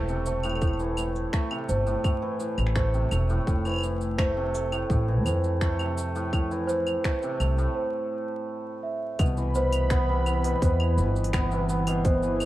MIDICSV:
0, 0, Header, 1, 6, 480
1, 0, Start_track
1, 0, Key_signature, 0, "major"
1, 0, Tempo, 714286
1, 417, Time_signature, 4, 2, 24, 8
1, 8368, End_track
2, 0, Start_track
2, 0, Title_t, "Celesta"
2, 0, Program_c, 0, 8
2, 0, Control_c, 0, 64, 127
2, 0, Note_on_c, 0, 72, 93
2, 174, Note_off_c, 0, 72, 0
2, 174, Note_on_c, 0, 72, 65
2, 312, Note_off_c, 0, 72, 0
2, 1135, Note_on_c, 0, 72, 86
2, 1364, Note_off_c, 0, 72, 0
2, 1854, Note_on_c, 0, 72, 66
2, 1993, Note_off_c, 0, 72, 0
2, 2347, Control_c, 0, 64, 0
2, 2473, Control_c, 0, 64, 127
2, 2808, Note_on_c, 0, 72, 88
2, 3041, Note_off_c, 0, 72, 0
2, 3532, Note_on_c, 0, 72, 70
2, 3672, Note_off_c, 0, 72, 0
2, 4485, Note_on_c, 0, 72, 105
2, 4719, Note_off_c, 0, 72, 0
2, 5212, Note_on_c, 0, 72, 75
2, 5351, Note_off_c, 0, 72, 0
2, 5934, Note_on_c, 0, 76, 67
2, 6164, Note_off_c, 0, 76, 0
2, 6187, Control_c, 0, 64, 0
2, 6319, Control_c, 0, 64, 127
2, 6421, Note_on_c, 0, 72, 103
2, 6647, Note_off_c, 0, 72, 0
2, 7139, Note_on_c, 0, 72, 77
2, 7275, Note_off_c, 0, 72, 0
2, 8100, Note_on_c, 0, 72, 91
2, 8327, Note_off_c, 0, 72, 0
2, 8368, End_track
3, 0, Start_track
3, 0, Title_t, "Analog synth pad"
3, 0, Program_c, 1, 89
3, 6177, Note_on_c, 1, 83, 95
3, 6178, Note_on_c, 1, 52, 81
3, 8078, Note_off_c, 1, 83, 0
3, 8091, Note_on_c, 1, 69, 93
3, 8368, Note_off_c, 1, 52, 0
3, 8368, Note_off_c, 1, 69, 0
3, 8368, End_track
4, 0, Start_track
4, 0, Title_t, "Hammered dulcimer"
4, 0, Program_c, 2, 15
4, 0, Note_on_c, 2, 45, 66
4, 0, Note_on_c, 2, 52, 69
4, 0, Note_on_c, 2, 57, 95
4, 0, Note_on_c, 2, 64, 64
4, 59, Note_on_c, 2, 48, 68
4, 91, Note_off_c, 2, 45, 0
4, 91, Note_off_c, 2, 52, 0
4, 177, Note_off_c, 2, 57, 0
4, 180, Note_on_c, 2, 57, 73
4, 299, Note_on_c, 2, 45, 91
4, 331, Note_off_c, 2, 48, 0
4, 409, Note_off_c, 2, 45, 0
4, 417, Note_on_c, 2, 45, 75
4, 536, Note_on_c, 2, 52, 69
4, 647, Note_off_c, 2, 45, 0
4, 655, Note_on_c, 2, 45, 63
4, 716, Note_off_c, 2, 64, 0
4, 891, Note_off_c, 2, 57, 0
4, 894, Note_on_c, 2, 57, 97
4, 1014, Note_on_c, 2, 48, 68
4, 1051, Note_off_c, 2, 45, 0
4, 1051, Note_off_c, 2, 52, 0
4, 1133, Note_off_c, 2, 57, 0
4, 1136, Note_on_c, 2, 57, 69
4, 1253, Note_on_c, 2, 45, 88
4, 1291, Note_off_c, 2, 48, 0
4, 1366, Note_off_c, 2, 45, 0
4, 1374, Note_on_c, 2, 45, 75
4, 1493, Note_on_c, 2, 52, 71
4, 1605, Note_off_c, 2, 45, 0
4, 1613, Note_on_c, 2, 45, 68
4, 1852, Note_off_c, 2, 57, 0
4, 1855, Note_on_c, 2, 57, 91
4, 1975, Note_on_c, 2, 48, 69
4, 2011, Note_off_c, 2, 45, 0
4, 2011, Note_off_c, 2, 52, 0
4, 2093, Note_off_c, 2, 57, 0
4, 2096, Note_on_c, 2, 57, 73
4, 2217, Note_on_c, 2, 45, 90
4, 2251, Note_off_c, 2, 48, 0
4, 2328, Note_off_c, 2, 45, 0
4, 2336, Note_on_c, 2, 45, 80
4, 2456, Note_on_c, 2, 52, 70
4, 2569, Note_off_c, 2, 45, 0
4, 2577, Note_on_c, 2, 45, 69
4, 2812, Note_off_c, 2, 57, 0
4, 2815, Note_on_c, 2, 57, 98
4, 2937, Note_on_c, 2, 48, 72
4, 2971, Note_off_c, 2, 45, 0
4, 2971, Note_off_c, 2, 52, 0
4, 3052, Note_off_c, 2, 57, 0
4, 3055, Note_on_c, 2, 57, 68
4, 3173, Note_on_c, 2, 45, 91
4, 3211, Note_off_c, 2, 48, 0
4, 3285, Note_off_c, 2, 45, 0
4, 3293, Note_on_c, 2, 45, 72
4, 3416, Note_on_c, 2, 52, 72
4, 3527, Note_off_c, 2, 45, 0
4, 3535, Note_on_c, 2, 45, 72
4, 3773, Note_off_c, 2, 57, 0
4, 3775, Note_on_c, 2, 57, 92
4, 3897, Note_on_c, 2, 48, 65
4, 3931, Note_off_c, 2, 45, 0
4, 3931, Note_off_c, 2, 52, 0
4, 4016, Note_off_c, 2, 57, 0
4, 4019, Note_on_c, 2, 57, 68
4, 4137, Note_on_c, 2, 45, 95
4, 4171, Note_off_c, 2, 48, 0
4, 4249, Note_off_c, 2, 45, 0
4, 4257, Note_on_c, 2, 45, 78
4, 4375, Note_on_c, 2, 52, 71
4, 4488, Note_off_c, 2, 45, 0
4, 4496, Note_on_c, 2, 45, 69
4, 4735, Note_off_c, 2, 57, 0
4, 4737, Note_on_c, 2, 57, 91
4, 4860, Note_on_c, 2, 48, 76
4, 4891, Note_off_c, 2, 45, 0
4, 4891, Note_off_c, 2, 52, 0
4, 4974, Note_off_c, 2, 57, 0
4, 4977, Note_on_c, 2, 57, 70
4, 5096, Note_on_c, 2, 45, 91
4, 5131, Note_off_c, 2, 48, 0
4, 6180, Note_on_c, 2, 47, 79
4, 6211, Note_off_c, 2, 45, 0
4, 6301, Note_on_c, 2, 52, 68
4, 6412, Note_off_c, 2, 47, 0
4, 6420, Note_on_c, 2, 47, 71
4, 6451, Note_off_c, 2, 52, 0
4, 6660, Note_on_c, 2, 59, 99
4, 6781, Note_on_c, 2, 48, 76
4, 6811, Note_off_c, 2, 47, 0
4, 6821, Note_off_c, 2, 59, 0
4, 6900, Note_on_c, 2, 59, 76
4, 7017, Note_on_c, 2, 47, 95
4, 7051, Note_off_c, 2, 48, 0
4, 7130, Note_off_c, 2, 47, 0
4, 7138, Note_on_c, 2, 47, 85
4, 7261, Note_on_c, 2, 52, 72
4, 7372, Note_off_c, 2, 47, 0
4, 7380, Note_on_c, 2, 47, 72
4, 7411, Note_off_c, 2, 52, 0
4, 7614, Note_off_c, 2, 59, 0
4, 7617, Note_on_c, 2, 59, 96
4, 7737, Note_on_c, 2, 48, 72
4, 7771, Note_off_c, 2, 47, 0
4, 7777, Note_off_c, 2, 59, 0
4, 7859, Note_on_c, 2, 59, 81
4, 7960, Note_off_c, 2, 57, 0
4, 7979, Note_on_c, 2, 47, 102
4, 8011, Note_off_c, 2, 48, 0
4, 8088, Note_off_c, 2, 47, 0
4, 8097, Note_on_c, 2, 47, 76
4, 8218, Note_on_c, 2, 52, 71
4, 8329, Note_off_c, 2, 47, 0
4, 8337, Note_on_c, 2, 47, 66
4, 8368, Note_off_c, 2, 47, 0
4, 8368, Note_off_c, 2, 52, 0
4, 8368, Note_off_c, 2, 59, 0
4, 8368, End_track
5, 0, Start_track
5, 0, Title_t, "Upright bass"
5, 0, Program_c, 3, 32
5, 0, Note_on_c, 3, 28, 75
5, 838, Note_off_c, 3, 28, 0
5, 1135, Note_on_c, 3, 31, 72
5, 1304, Note_off_c, 3, 31, 0
5, 1733, Note_on_c, 3, 33, 94
5, 2038, Note_off_c, 3, 33, 0
5, 2095, Note_on_c, 3, 28, 95
5, 2265, Note_off_c, 3, 28, 0
5, 2333, Note_on_c, 3, 29, 86
5, 3238, Note_off_c, 3, 29, 0
5, 3292, Note_on_c, 3, 33, 85
5, 3530, Note_off_c, 3, 33, 0
5, 3530, Note_on_c, 3, 41, 82
5, 4677, Note_off_c, 3, 41, 0
5, 4974, Note_on_c, 3, 36, 77
5, 5144, Note_off_c, 3, 36, 0
5, 6177, Note_on_c, 3, 36, 84
5, 7080, Note_off_c, 3, 36, 0
5, 7138, Note_on_c, 3, 40, 85
5, 7375, Note_on_c, 3, 31, 81
5, 7385, Note_off_c, 3, 40, 0
5, 8368, Note_off_c, 3, 31, 0
5, 8368, End_track
6, 0, Start_track
6, 0, Title_t, "Drums"
6, 57, Note_on_c, 9, 82, 27
6, 124, Note_off_c, 9, 82, 0
6, 174, Note_on_c, 9, 82, 77
6, 241, Note_off_c, 9, 82, 0
6, 292, Note_on_c, 9, 75, 73
6, 294, Note_on_c, 9, 82, 33
6, 333, Note_off_c, 9, 75, 0
6, 333, Note_on_c, 9, 75, 63
6, 362, Note_off_c, 9, 82, 0
6, 373, Note_off_c, 9, 75, 0
6, 373, Note_on_c, 9, 75, 48
6, 412, Note_off_c, 9, 75, 0
6, 412, Note_on_c, 9, 75, 38
6, 415, Note_on_c, 9, 36, 82
6, 415, Note_on_c, 9, 82, 37
6, 453, Note_off_c, 9, 75, 0
6, 453, Note_on_c, 9, 75, 34
6, 482, Note_off_c, 9, 36, 0
6, 482, Note_off_c, 9, 82, 0
6, 493, Note_off_c, 9, 75, 0
6, 493, Note_on_c, 9, 75, 26
6, 535, Note_on_c, 9, 82, 27
6, 560, Note_off_c, 9, 75, 0
6, 602, Note_off_c, 9, 82, 0
6, 652, Note_on_c, 9, 75, 76
6, 655, Note_on_c, 9, 82, 70
6, 720, Note_off_c, 9, 75, 0
6, 722, Note_off_c, 9, 82, 0
6, 777, Note_on_c, 9, 82, 30
6, 844, Note_off_c, 9, 82, 0
6, 893, Note_on_c, 9, 26, 87
6, 894, Note_on_c, 9, 36, 94
6, 896, Note_on_c, 9, 82, 39
6, 961, Note_off_c, 9, 26, 0
6, 961, Note_off_c, 9, 36, 0
6, 963, Note_off_c, 9, 82, 0
6, 1013, Note_on_c, 9, 75, 78
6, 1081, Note_off_c, 9, 75, 0
6, 1135, Note_on_c, 9, 82, 74
6, 1202, Note_off_c, 9, 82, 0
6, 1255, Note_on_c, 9, 82, 30
6, 1322, Note_off_c, 9, 82, 0
6, 1373, Note_on_c, 9, 36, 94
6, 1373, Note_on_c, 9, 75, 76
6, 1375, Note_on_c, 9, 82, 38
6, 1440, Note_off_c, 9, 75, 0
6, 1441, Note_off_c, 9, 36, 0
6, 1442, Note_off_c, 9, 82, 0
6, 1612, Note_on_c, 9, 82, 68
6, 1679, Note_off_c, 9, 82, 0
6, 1732, Note_on_c, 9, 75, 69
6, 1735, Note_on_c, 9, 82, 31
6, 1792, Note_on_c, 9, 26, 27
6, 1800, Note_off_c, 9, 75, 0
6, 1802, Note_off_c, 9, 82, 0
6, 1852, Note_off_c, 9, 26, 0
6, 1852, Note_on_c, 9, 26, 88
6, 1853, Note_on_c, 9, 36, 89
6, 1854, Note_on_c, 9, 82, 37
6, 1919, Note_off_c, 9, 26, 0
6, 1920, Note_off_c, 9, 36, 0
6, 1921, Note_off_c, 9, 82, 0
6, 1975, Note_on_c, 9, 82, 25
6, 2042, Note_off_c, 9, 82, 0
6, 2091, Note_on_c, 9, 75, 84
6, 2094, Note_on_c, 9, 82, 76
6, 2159, Note_off_c, 9, 75, 0
6, 2161, Note_off_c, 9, 82, 0
6, 2214, Note_on_c, 9, 82, 29
6, 2281, Note_off_c, 9, 82, 0
6, 2333, Note_on_c, 9, 36, 92
6, 2337, Note_on_c, 9, 82, 40
6, 2400, Note_off_c, 9, 36, 0
6, 2404, Note_off_c, 9, 82, 0
6, 2453, Note_on_c, 9, 75, 37
6, 2456, Note_on_c, 9, 82, 28
6, 2469, Note_off_c, 9, 75, 0
6, 2469, Note_on_c, 9, 75, 39
6, 2483, Note_off_c, 9, 75, 0
6, 2483, Note_on_c, 9, 75, 42
6, 2498, Note_off_c, 9, 75, 0
6, 2498, Note_on_c, 9, 75, 48
6, 2512, Note_off_c, 9, 75, 0
6, 2512, Note_on_c, 9, 75, 51
6, 2523, Note_off_c, 9, 82, 0
6, 2528, Note_off_c, 9, 75, 0
6, 2528, Note_on_c, 9, 75, 61
6, 2544, Note_off_c, 9, 75, 0
6, 2544, Note_on_c, 9, 75, 67
6, 2558, Note_off_c, 9, 75, 0
6, 2558, Note_on_c, 9, 75, 63
6, 2576, Note_on_c, 9, 82, 69
6, 2625, Note_off_c, 9, 75, 0
6, 2643, Note_off_c, 9, 82, 0
6, 2695, Note_on_c, 9, 82, 30
6, 2762, Note_off_c, 9, 82, 0
6, 2812, Note_on_c, 9, 36, 96
6, 2813, Note_on_c, 9, 26, 88
6, 2813, Note_on_c, 9, 75, 76
6, 2815, Note_on_c, 9, 82, 38
6, 2879, Note_off_c, 9, 36, 0
6, 2880, Note_off_c, 9, 26, 0
6, 2880, Note_off_c, 9, 75, 0
6, 2882, Note_off_c, 9, 82, 0
6, 3055, Note_on_c, 9, 82, 73
6, 3122, Note_off_c, 9, 82, 0
6, 3174, Note_on_c, 9, 75, 82
6, 3176, Note_on_c, 9, 82, 31
6, 3241, Note_off_c, 9, 75, 0
6, 3243, Note_off_c, 9, 82, 0
6, 3291, Note_on_c, 9, 36, 87
6, 3297, Note_on_c, 9, 82, 37
6, 3358, Note_off_c, 9, 36, 0
6, 3364, Note_off_c, 9, 82, 0
6, 3532, Note_on_c, 9, 75, 71
6, 3535, Note_on_c, 9, 82, 68
6, 3599, Note_off_c, 9, 75, 0
6, 3602, Note_off_c, 9, 82, 0
6, 3654, Note_on_c, 9, 82, 30
6, 3721, Note_off_c, 9, 82, 0
6, 3772, Note_on_c, 9, 26, 97
6, 3772, Note_on_c, 9, 36, 87
6, 3774, Note_on_c, 9, 82, 38
6, 3839, Note_off_c, 9, 26, 0
6, 3839, Note_off_c, 9, 36, 0
6, 3841, Note_off_c, 9, 82, 0
6, 3893, Note_on_c, 9, 75, 74
6, 3896, Note_on_c, 9, 82, 26
6, 3960, Note_off_c, 9, 75, 0
6, 3963, Note_off_c, 9, 82, 0
6, 4016, Note_on_c, 9, 82, 76
6, 4083, Note_off_c, 9, 82, 0
6, 4136, Note_on_c, 9, 82, 31
6, 4204, Note_off_c, 9, 82, 0
6, 4253, Note_on_c, 9, 36, 84
6, 4255, Note_on_c, 9, 75, 75
6, 4257, Note_on_c, 9, 82, 40
6, 4320, Note_off_c, 9, 36, 0
6, 4322, Note_off_c, 9, 75, 0
6, 4324, Note_off_c, 9, 82, 0
6, 4377, Note_on_c, 9, 82, 27
6, 4444, Note_off_c, 9, 82, 0
6, 4495, Note_on_c, 9, 82, 69
6, 4562, Note_off_c, 9, 82, 0
6, 4613, Note_on_c, 9, 75, 75
6, 4616, Note_on_c, 9, 82, 32
6, 4681, Note_off_c, 9, 75, 0
6, 4683, Note_off_c, 9, 82, 0
6, 4733, Note_on_c, 9, 26, 95
6, 4734, Note_on_c, 9, 36, 94
6, 4735, Note_on_c, 9, 82, 40
6, 4800, Note_off_c, 9, 26, 0
6, 4801, Note_off_c, 9, 36, 0
6, 4802, Note_off_c, 9, 82, 0
6, 4854, Note_on_c, 9, 82, 30
6, 4922, Note_off_c, 9, 82, 0
6, 4973, Note_on_c, 9, 75, 75
6, 4976, Note_on_c, 9, 82, 71
6, 5041, Note_off_c, 9, 75, 0
6, 5043, Note_off_c, 9, 82, 0
6, 5097, Note_on_c, 9, 82, 30
6, 5164, Note_off_c, 9, 82, 0
6, 6176, Note_on_c, 9, 46, 44
6, 6176, Note_on_c, 9, 75, 75
6, 6177, Note_on_c, 9, 36, 105
6, 6178, Note_on_c, 9, 82, 46
6, 6243, Note_off_c, 9, 46, 0
6, 6243, Note_off_c, 9, 75, 0
6, 6244, Note_off_c, 9, 36, 0
6, 6246, Note_off_c, 9, 82, 0
6, 6298, Note_on_c, 9, 82, 32
6, 6365, Note_off_c, 9, 82, 0
6, 6418, Note_on_c, 9, 82, 73
6, 6485, Note_off_c, 9, 82, 0
6, 6536, Note_on_c, 9, 46, 56
6, 6536, Note_on_c, 9, 75, 77
6, 6538, Note_on_c, 9, 82, 33
6, 6603, Note_off_c, 9, 46, 0
6, 6603, Note_off_c, 9, 75, 0
6, 6605, Note_off_c, 9, 82, 0
6, 6654, Note_on_c, 9, 26, 103
6, 6654, Note_on_c, 9, 46, 46
6, 6657, Note_on_c, 9, 36, 110
6, 6657, Note_on_c, 9, 82, 42
6, 6721, Note_off_c, 9, 26, 0
6, 6721, Note_off_c, 9, 46, 0
6, 6724, Note_off_c, 9, 36, 0
6, 6724, Note_off_c, 9, 82, 0
6, 6895, Note_on_c, 9, 75, 77
6, 6898, Note_on_c, 9, 82, 76
6, 6963, Note_off_c, 9, 75, 0
6, 6965, Note_off_c, 9, 82, 0
6, 7017, Note_on_c, 9, 46, 57
6, 7020, Note_on_c, 9, 82, 33
6, 7085, Note_off_c, 9, 46, 0
6, 7087, Note_off_c, 9, 82, 0
6, 7136, Note_on_c, 9, 36, 103
6, 7137, Note_on_c, 9, 46, 46
6, 7140, Note_on_c, 9, 82, 46
6, 7204, Note_off_c, 9, 36, 0
6, 7205, Note_off_c, 9, 46, 0
6, 7207, Note_off_c, 9, 82, 0
6, 7257, Note_on_c, 9, 75, 76
6, 7324, Note_off_c, 9, 75, 0
6, 7378, Note_on_c, 9, 82, 73
6, 7445, Note_off_c, 9, 82, 0
6, 7499, Note_on_c, 9, 82, 33
6, 7556, Note_on_c, 9, 46, 53
6, 7566, Note_off_c, 9, 82, 0
6, 7616, Note_off_c, 9, 46, 0
6, 7616, Note_on_c, 9, 26, 106
6, 7616, Note_on_c, 9, 46, 44
6, 7616, Note_on_c, 9, 75, 74
6, 7617, Note_on_c, 9, 36, 109
6, 7618, Note_on_c, 9, 82, 42
6, 7683, Note_off_c, 9, 26, 0
6, 7683, Note_off_c, 9, 46, 0
6, 7683, Note_off_c, 9, 75, 0
6, 7684, Note_off_c, 9, 36, 0
6, 7686, Note_off_c, 9, 82, 0
6, 7739, Note_on_c, 9, 82, 30
6, 7806, Note_off_c, 9, 82, 0
6, 7857, Note_on_c, 9, 82, 81
6, 7924, Note_off_c, 9, 82, 0
6, 7976, Note_on_c, 9, 46, 64
6, 7976, Note_on_c, 9, 75, 83
6, 7979, Note_on_c, 9, 82, 35
6, 8044, Note_off_c, 9, 46, 0
6, 8044, Note_off_c, 9, 75, 0
6, 8046, Note_off_c, 9, 82, 0
6, 8095, Note_on_c, 9, 46, 44
6, 8097, Note_on_c, 9, 36, 111
6, 8097, Note_on_c, 9, 82, 47
6, 8162, Note_off_c, 9, 46, 0
6, 8164, Note_off_c, 9, 36, 0
6, 8165, Note_off_c, 9, 82, 0
6, 8217, Note_on_c, 9, 82, 33
6, 8284, Note_off_c, 9, 82, 0
6, 8334, Note_on_c, 9, 75, 77
6, 8336, Note_on_c, 9, 82, 73
6, 8368, Note_off_c, 9, 75, 0
6, 8368, Note_off_c, 9, 82, 0
6, 8368, End_track
0, 0, End_of_file